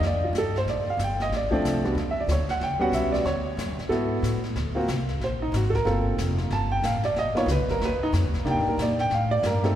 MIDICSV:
0, 0, Header, 1, 5, 480
1, 0, Start_track
1, 0, Tempo, 324675
1, 977, Time_signature, 4, 2, 24, 8
1, 14420, End_track
2, 0, Start_track
2, 0, Title_t, "Upright piano"
2, 0, Program_c, 0, 0
2, 90, Note_on_c, 0, 74, 74
2, 345, Note_off_c, 0, 74, 0
2, 356, Note_on_c, 0, 65, 64
2, 513, Note_off_c, 0, 65, 0
2, 563, Note_on_c, 0, 69, 84
2, 821, Note_off_c, 0, 69, 0
2, 852, Note_on_c, 0, 72, 85
2, 1001, Note_off_c, 0, 72, 0
2, 1025, Note_on_c, 0, 74, 75
2, 1291, Note_off_c, 0, 74, 0
2, 1331, Note_on_c, 0, 77, 86
2, 1480, Note_off_c, 0, 77, 0
2, 1533, Note_on_c, 0, 79, 85
2, 1785, Note_off_c, 0, 79, 0
2, 1803, Note_on_c, 0, 75, 91
2, 1955, Note_off_c, 0, 75, 0
2, 2018, Note_on_c, 0, 74, 79
2, 2172, Note_off_c, 0, 74, 0
2, 2229, Note_on_c, 0, 53, 74
2, 2243, Note_on_c, 0, 57, 71
2, 2247, Note_on_c, 0, 60, 71
2, 2255, Note_on_c, 0, 62, 83
2, 2681, Note_off_c, 0, 53, 0
2, 2688, Note_off_c, 0, 57, 0
2, 2690, Note_off_c, 0, 60, 0
2, 2694, Note_off_c, 0, 62, 0
2, 2713, Note_on_c, 0, 55, 61
2, 2726, Note_on_c, 0, 59, 59
2, 2726, Note_on_c, 0, 62, 59
2, 2739, Note_on_c, 0, 66, 68
2, 2876, Note_off_c, 0, 55, 0
2, 2883, Note_off_c, 0, 59, 0
2, 2883, Note_off_c, 0, 62, 0
2, 2889, Note_off_c, 0, 66, 0
2, 3116, Note_on_c, 0, 76, 82
2, 3241, Note_off_c, 0, 76, 0
2, 3261, Note_on_c, 0, 74, 74
2, 3393, Note_off_c, 0, 74, 0
2, 3424, Note_on_c, 0, 73, 74
2, 3689, Note_off_c, 0, 73, 0
2, 3702, Note_on_c, 0, 78, 94
2, 3864, Note_off_c, 0, 78, 0
2, 3886, Note_on_c, 0, 79, 88
2, 4129, Note_on_c, 0, 55, 76
2, 4140, Note_on_c, 0, 59, 71
2, 4157, Note_on_c, 0, 66, 92
2, 4158, Note_on_c, 0, 61, 69
2, 4160, Note_off_c, 0, 79, 0
2, 4160, Note_on_c, 0, 78, 98
2, 4332, Note_off_c, 0, 78, 0
2, 4351, Note_on_c, 0, 76, 87
2, 4619, Note_on_c, 0, 74, 84
2, 4632, Note_off_c, 0, 76, 0
2, 4766, Note_off_c, 0, 55, 0
2, 4771, Note_off_c, 0, 59, 0
2, 4780, Note_off_c, 0, 61, 0
2, 4780, Note_off_c, 0, 66, 0
2, 4801, Note_off_c, 0, 74, 0
2, 4813, Note_on_c, 0, 73, 90
2, 5538, Note_off_c, 0, 73, 0
2, 5753, Note_on_c, 0, 69, 74
2, 5766, Note_on_c, 0, 59, 69
2, 5771, Note_on_c, 0, 64, 64
2, 5779, Note_on_c, 0, 66, 78
2, 6483, Note_off_c, 0, 69, 0
2, 6490, Note_off_c, 0, 59, 0
2, 6492, Note_off_c, 0, 64, 0
2, 6496, Note_off_c, 0, 66, 0
2, 7018, Note_on_c, 0, 58, 68
2, 7025, Note_on_c, 0, 60, 65
2, 7032, Note_on_c, 0, 65, 63
2, 7052, Note_on_c, 0, 66, 78
2, 7190, Note_off_c, 0, 58, 0
2, 7193, Note_off_c, 0, 60, 0
2, 7197, Note_off_c, 0, 65, 0
2, 7206, Note_off_c, 0, 66, 0
2, 7745, Note_on_c, 0, 72, 79
2, 8012, Note_off_c, 0, 72, 0
2, 8016, Note_on_c, 0, 63, 76
2, 8182, Note_off_c, 0, 63, 0
2, 8220, Note_on_c, 0, 66, 76
2, 8427, Note_on_c, 0, 69, 72
2, 8454, Note_off_c, 0, 69, 0
2, 8489, Note_off_c, 0, 66, 0
2, 8504, Note_on_c, 0, 70, 100
2, 8644, Note_on_c, 0, 58, 67
2, 8650, Note_on_c, 0, 60, 57
2, 8658, Note_on_c, 0, 65, 61
2, 8666, Note_on_c, 0, 69, 69
2, 8667, Note_off_c, 0, 70, 0
2, 9649, Note_on_c, 0, 81, 82
2, 9924, Note_off_c, 0, 81, 0
2, 9929, Note_on_c, 0, 79, 105
2, 9983, Note_off_c, 0, 58, 0
2, 9986, Note_off_c, 0, 60, 0
2, 9990, Note_off_c, 0, 65, 0
2, 9994, Note_off_c, 0, 69, 0
2, 10100, Note_off_c, 0, 79, 0
2, 10126, Note_on_c, 0, 77, 85
2, 10403, Note_off_c, 0, 77, 0
2, 10420, Note_on_c, 0, 74, 95
2, 10586, Note_off_c, 0, 74, 0
2, 10625, Note_on_c, 0, 75, 97
2, 10859, Note_on_c, 0, 58, 61
2, 10866, Note_on_c, 0, 59, 62
2, 10873, Note_on_c, 0, 63, 61
2, 10890, Note_on_c, 0, 65, 67
2, 10893, Note_off_c, 0, 75, 0
2, 10902, Note_on_c, 0, 73, 86
2, 11032, Note_off_c, 0, 58, 0
2, 11036, Note_off_c, 0, 59, 0
2, 11039, Note_off_c, 0, 63, 0
2, 11048, Note_off_c, 0, 65, 0
2, 11067, Note_off_c, 0, 73, 0
2, 11108, Note_on_c, 0, 71, 77
2, 11375, Note_off_c, 0, 71, 0
2, 11394, Note_on_c, 0, 70, 91
2, 11553, Note_off_c, 0, 70, 0
2, 11608, Note_on_c, 0, 71, 89
2, 11865, Note_off_c, 0, 71, 0
2, 11875, Note_on_c, 0, 63, 100
2, 11973, Note_off_c, 0, 63, 0
2, 12492, Note_on_c, 0, 62, 58
2, 12494, Note_on_c, 0, 58, 67
2, 12503, Note_on_c, 0, 63, 57
2, 12515, Note_on_c, 0, 67, 68
2, 12576, Note_on_c, 0, 79, 97
2, 12829, Note_off_c, 0, 79, 0
2, 12843, Note_on_c, 0, 70, 70
2, 12997, Note_off_c, 0, 70, 0
2, 13042, Note_on_c, 0, 74, 77
2, 13214, Note_off_c, 0, 62, 0
2, 13215, Note_off_c, 0, 58, 0
2, 13220, Note_off_c, 0, 63, 0
2, 13226, Note_off_c, 0, 67, 0
2, 13301, Note_off_c, 0, 74, 0
2, 13310, Note_on_c, 0, 79, 112
2, 13470, Note_off_c, 0, 79, 0
2, 13516, Note_on_c, 0, 77, 85
2, 13768, Note_on_c, 0, 74, 109
2, 13778, Note_off_c, 0, 77, 0
2, 13939, Note_off_c, 0, 74, 0
2, 13986, Note_on_c, 0, 70, 87
2, 14241, Note_on_c, 0, 57, 63
2, 14252, Note_off_c, 0, 70, 0
2, 14252, Note_on_c, 0, 60, 56
2, 14259, Note_on_c, 0, 63, 55
2, 14265, Note_on_c, 0, 69, 66
2, 14420, Note_off_c, 0, 57, 0
2, 14420, Note_off_c, 0, 60, 0
2, 14420, Note_off_c, 0, 63, 0
2, 14420, Note_off_c, 0, 69, 0
2, 14420, End_track
3, 0, Start_track
3, 0, Title_t, "Upright bass"
3, 0, Program_c, 1, 32
3, 2, Note_on_c, 1, 41, 81
3, 475, Note_off_c, 1, 41, 0
3, 486, Note_on_c, 1, 43, 87
3, 957, Note_off_c, 1, 43, 0
3, 965, Note_on_c, 1, 34, 78
3, 1248, Note_off_c, 1, 34, 0
3, 1438, Note_on_c, 1, 31, 85
3, 1906, Note_off_c, 1, 31, 0
3, 1915, Note_on_c, 1, 33, 75
3, 2390, Note_off_c, 1, 33, 0
3, 2396, Note_on_c, 1, 36, 87
3, 2870, Note_off_c, 1, 36, 0
3, 2881, Note_on_c, 1, 40, 89
3, 3353, Note_off_c, 1, 40, 0
3, 3361, Note_on_c, 1, 38, 87
3, 3645, Note_off_c, 1, 38, 0
3, 3844, Note_on_c, 1, 37, 76
3, 4126, Note_off_c, 1, 37, 0
3, 4312, Note_on_c, 1, 35, 89
3, 4788, Note_off_c, 1, 35, 0
3, 4798, Note_on_c, 1, 38, 85
3, 5271, Note_off_c, 1, 38, 0
3, 5280, Note_on_c, 1, 42, 85
3, 5439, Note_off_c, 1, 42, 0
3, 5439, Note_on_c, 1, 38, 53
3, 5593, Note_off_c, 1, 38, 0
3, 5602, Note_on_c, 1, 35, 64
3, 5752, Note_off_c, 1, 35, 0
3, 5761, Note_on_c, 1, 44, 77
3, 6233, Note_off_c, 1, 44, 0
3, 6246, Note_on_c, 1, 45, 89
3, 6716, Note_off_c, 1, 45, 0
3, 6733, Note_on_c, 1, 38, 80
3, 7200, Note_off_c, 1, 38, 0
3, 7211, Note_on_c, 1, 36, 90
3, 7671, Note_off_c, 1, 36, 0
3, 7680, Note_on_c, 1, 34, 70
3, 8150, Note_off_c, 1, 34, 0
3, 8159, Note_on_c, 1, 32, 87
3, 8634, Note_off_c, 1, 32, 0
3, 8651, Note_on_c, 1, 31, 84
3, 9121, Note_off_c, 1, 31, 0
3, 9140, Note_on_c, 1, 29, 86
3, 9605, Note_off_c, 1, 29, 0
3, 9616, Note_on_c, 1, 31, 78
3, 10078, Note_off_c, 1, 31, 0
3, 10087, Note_on_c, 1, 33, 86
3, 10551, Note_off_c, 1, 33, 0
3, 10560, Note_on_c, 1, 35, 79
3, 10847, Note_off_c, 1, 35, 0
3, 11029, Note_on_c, 1, 37, 97
3, 11189, Note_off_c, 1, 37, 0
3, 11189, Note_on_c, 1, 35, 61
3, 11339, Note_off_c, 1, 35, 0
3, 11348, Note_on_c, 1, 31, 64
3, 11512, Note_off_c, 1, 31, 0
3, 11530, Note_on_c, 1, 39, 82
3, 11812, Note_off_c, 1, 39, 0
3, 12013, Note_on_c, 1, 41, 98
3, 12179, Note_off_c, 1, 41, 0
3, 12179, Note_on_c, 1, 39, 61
3, 12334, Note_off_c, 1, 39, 0
3, 12343, Note_on_c, 1, 35, 69
3, 12490, Note_off_c, 1, 35, 0
3, 12498, Note_on_c, 1, 48, 83
3, 12659, Note_off_c, 1, 48, 0
3, 12659, Note_on_c, 1, 46, 56
3, 12806, Note_off_c, 1, 46, 0
3, 12814, Note_on_c, 1, 43, 68
3, 12962, Note_off_c, 1, 43, 0
3, 12971, Note_on_c, 1, 46, 86
3, 13440, Note_off_c, 1, 46, 0
3, 13455, Note_on_c, 1, 45, 89
3, 13922, Note_off_c, 1, 45, 0
3, 13938, Note_on_c, 1, 43, 96
3, 14403, Note_off_c, 1, 43, 0
3, 14420, End_track
4, 0, Start_track
4, 0, Title_t, "Muted upright bass strokes"
4, 1269, Note_on_c, 9, 29, 40
4, 1417, Note_off_c, 9, 29, 0
4, 3665, Note_on_c, 9, 29, 37
4, 3812, Note_off_c, 9, 29, 0
4, 4135, Note_on_c, 9, 29, 37
4, 4282, Note_off_c, 9, 29, 0
4, 10865, Note_on_c, 9, 29, 41
4, 11013, Note_off_c, 9, 29, 0
4, 11831, Note_on_c, 9, 29, 40
4, 11979, Note_off_c, 9, 29, 0
4, 14420, End_track
5, 0, Start_track
5, 0, Title_t, "Drums"
5, 41, Note_on_c, 9, 25, 50
5, 41, Note_on_c, 9, 38, 45
5, 189, Note_off_c, 9, 38, 0
5, 512, Note_on_c, 9, 44, 53
5, 515, Note_on_c, 9, 38, 63
5, 660, Note_off_c, 9, 44, 0
5, 663, Note_off_c, 9, 38, 0
5, 823, Note_on_c, 9, 38, 39
5, 971, Note_off_c, 9, 38, 0
5, 999, Note_off_c, 9, 25, 0
5, 999, Note_on_c, 9, 25, 57
5, 999, Note_on_c, 9, 38, 46
5, 1147, Note_off_c, 9, 38, 0
5, 1464, Note_on_c, 9, 44, 64
5, 1467, Note_on_c, 9, 38, 63
5, 1611, Note_off_c, 9, 44, 0
5, 1614, Note_off_c, 9, 38, 0
5, 1771, Note_on_c, 9, 38, 37
5, 1919, Note_off_c, 9, 38, 0
5, 1953, Note_off_c, 9, 25, 0
5, 1953, Note_on_c, 9, 25, 53
5, 1953, Note_on_c, 9, 38, 47
5, 2101, Note_off_c, 9, 38, 0
5, 2247, Note_on_c, 9, 36, 69
5, 2395, Note_off_c, 9, 36, 0
5, 2437, Note_on_c, 9, 44, 56
5, 2440, Note_on_c, 9, 38, 61
5, 2585, Note_off_c, 9, 44, 0
5, 2588, Note_off_c, 9, 38, 0
5, 2735, Note_on_c, 9, 38, 35
5, 2883, Note_off_c, 9, 38, 0
5, 2919, Note_off_c, 9, 25, 0
5, 2919, Note_on_c, 9, 25, 52
5, 2919, Note_on_c, 9, 38, 46
5, 3067, Note_off_c, 9, 38, 0
5, 3378, Note_on_c, 9, 44, 60
5, 3381, Note_on_c, 9, 38, 67
5, 3526, Note_off_c, 9, 44, 0
5, 3529, Note_off_c, 9, 38, 0
5, 3678, Note_on_c, 9, 38, 39
5, 3826, Note_off_c, 9, 38, 0
5, 3860, Note_off_c, 9, 25, 0
5, 3860, Note_on_c, 9, 25, 51
5, 3860, Note_on_c, 9, 38, 45
5, 4008, Note_off_c, 9, 38, 0
5, 4328, Note_on_c, 9, 44, 59
5, 4331, Note_on_c, 9, 38, 56
5, 4476, Note_off_c, 9, 44, 0
5, 4479, Note_off_c, 9, 38, 0
5, 4639, Note_on_c, 9, 38, 42
5, 4786, Note_off_c, 9, 38, 0
5, 4811, Note_off_c, 9, 25, 0
5, 4811, Note_on_c, 9, 25, 52
5, 4811, Note_on_c, 9, 38, 45
5, 4959, Note_off_c, 9, 38, 0
5, 5298, Note_on_c, 9, 44, 62
5, 5301, Note_on_c, 9, 38, 59
5, 5446, Note_off_c, 9, 44, 0
5, 5449, Note_off_c, 9, 38, 0
5, 5602, Note_on_c, 9, 38, 38
5, 5750, Note_off_c, 9, 38, 0
5, 5789, Note_off_c, 9, 25, 0
5, 5789, Note_on_c, 9, 25, 51
5, 5789, Note_on_c, 9, 38, 47
5, 5937, Note_off_c, 9, 38, 0
5, 6262, Note_on_c, 9, 44, 66
5, 6265, Note_on_c, 9, 38, 64
5, 6410, Note_off_c, 9, 44, 0
5, 6413, Note_off_c, 9, 38, 0
5, 6559, Note_on_c, 9, 38, 38
5, 6707, Note_off_c, 9, 38, 0
5, 6737, Note_off_c, 9, 25, 0
5, 6737, Note_on_c, 9, 25, 50
5, 6737, Note_on_c, 9, 38, 45
5, 6885, Note_off_c, 9, 38, 0
5, 7217, Note_on_c, 9, 44, 60
5, 7219, Note_on_c, 9, 38, 66
5, 7364, Note_off_c, 9, 44, 0
5, 7367, Note_off_c, 9, 38, 0
5, 7519, Note_on_c, 9, 38, 41
5, 7667, Note_off_c, 9, 38, 0
5, 7706, Note_off_c, 9, 25, 0
5, 7706, Note_on_c, 9, 25, 50
5, 7706, Note_on_c, 9, 38, 47
5, 7854, Note_off_c, 9, 38, 0
5, 8184, Note_on_c, 9, 44, 58
5, 8187, Note_on_c, 9, 38, 62
5, 8331, Note_off_c, 9, 44, 0
5, 8334, Note_off_c, 9, 38, 0
5, 8485, Note_on_c, 9, 36, 58
5, 8494, Note_on_c, 9, 38, 42
5, 8632, Note_off_c, 9, 36, 0
5, 8641, Note_off_c, 9, 38, 0
5, 8674, Note_off_c, 9, 25, 0
5, 8674, Note_on_c, 9, 25, 48
5, 8674, Note_on_c, 9, 38, 49
5, 8822, Note_off_c, 9, 38, 0
5, 9139, Note_on_c, 9, 44, 60
5, 9142, Note_on_c, 9, 38, 69
5, 9287, Note_off_c, 9, 44, 0
5, 9290, Note_off_c, 9, 38, 0
5, 9434, Note_on_c, 9, 38, 39
5, 9582, Note_off_c, 9, 38, 0
5, 9616, Note_off_c, 9, 25, 0
5, 9616, Note_on_c, 9, 25, 57
5, 9616, Note_on_c, 9, 38, 47
5, 9763, Note_off_c, 9, 38, 0
5, 10101, Note_on_c, 9, 44, 68
5, 10104, Note_on_c, 9, 38, 65
5, 10249, Note_off_c, 9, 44, 0
5, 10252, Note_off_c, 9, 38, 0
5, 10399, Note_on_c, 9, 38, 43
5, 10547, Note_off_c, 9, 38, 0
5, 10586, Note_off_c, 9, 25, 0
5, 10586, Note_on_c, 9, 25, 54
5, 10586, Note_on_c, 9, 38, 46
5, 10734, Note_off_c, 9, 38, 0
5, 10890, Note_on_c, 9, 38, 55
5, 11038, Note_off_c, 9, 38, 0
5, 11059, Note_on_c, 9, 44, 65
5, 11062, Note_on_c, 9, 38, 67
5, 11207, Note_off_c, 9, 44, 0
5, 11210, Note_off_c, 9, 38, 0
5, 11369, Note_on_c, 9, 38, 36
5, 11517, Note_off_c, 9, 38, 0
5, 11552, Note_off_c, 9, 25, 0
5, 11552, Note_on_c, 9, 25, 57
5, 11552, Note_on_c, 9, 38, 48
5, 11700, Note_off_c, 9, 38, 0
5, 12025, Note_on_c, 9, 44, 59
5, 12028, Note_on_c, 9, 38, 67
5, 12173, Note_off_c, 9, 44, 0
5, 12176, Note_off_c, 9, 38, 0
5, 12327, Note_on_c, 9, 38, 38
5, 12475, Note_off_c, 9, 38, 0
5, 12513, Note_off_c, 9, 25, 0
5, 12513, Note_on_c, 9, 25, 59
5, 12513, Note_on_c, 9, 38, 47
5, 12661, Note_off_c, 9, 38, 0
5, 12989, Note_on_c, 9, 44, 55
5, 12992, Note_on_c, 9, 38, 65
5, 13137, Note_off_c, 9, 44, 0
5, 13140, Note_off_c, 9, 38, 0
5, 13291, Note_on_c, 9, 38, 40
5, 13439, Note_off_c, 9, 38, 0
5, 13464, Note_off_c, 9, 25, 0
5, 13464, Note_on_c, 9, 25, 49
5, 13464, Note_on_c, 9, 38, 50
5, 13612, Note_off_c, 9, 38, 0
5, 13943, Note_on_c, 9, 44, 55
5, 13946, Note_on_c, 9, 38, 70
5, 14091, Note_off_c, 9, 44, 0
5, 14094, Note_off_c, 9, 38, 0
5, 14248, Note_on_c, 9, 38, 44
5, 14396, Note_off_c, 9, 38, 0
5, 14420, Note_off_c, 9, 25, 0
5, 14420, End_track
0, 0, End_of_file